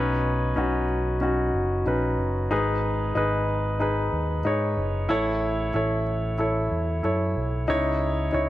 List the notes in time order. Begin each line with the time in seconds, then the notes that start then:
Already playing: B1 B2 C#4 D#4 B4
0.56 B1 C#4 D#4 F#4
1.21 C#4 D#4 F#4
1.54 F#1
1.86 A#1 C#4 D#4 B4
2.18 F#1
2.50 G#1 G#2 D#4 G#4 B4
3.15 G#1 D#4 G#4 B4
3.80 D#4 G#4 B4
4.13 D#2
4.45 G#2 D#4 G#4 C#5
4.77 F#1
5.09 A1 A2 E4 A4 C#5
5.74 A1 E4 A4 C#5
6.38 E4 A4 C#5
6.71 E2
7.03 F#2 E4 A4 C#5
7.36 B1
7.68 C#2 C#3 D#4 E4 C#5
8.32 C#2 D#4 E4 C#5